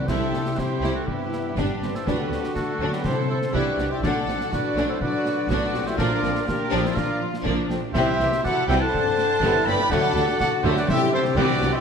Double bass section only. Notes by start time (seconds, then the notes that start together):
0.08 C2
0.33 C2
0.82 C2
1.56 G1
1.82 G1
2.07 D2
2.31 D2
2.80 D2
3.53 C2
3.78 C2
4.02 B1
4.27 B1
4.75 B1
5.49 B1
5.74 B1
5.99 A#1
6.23 A#1
6.73 A#1
7.45 A#1
7.69 A#1
7.94 C2
8.19 C2
8.68 C2
9.41 G1
9.66 G1
9.91 D2
10.14 D2
10.63 D2
11.36 C2
11.60 C2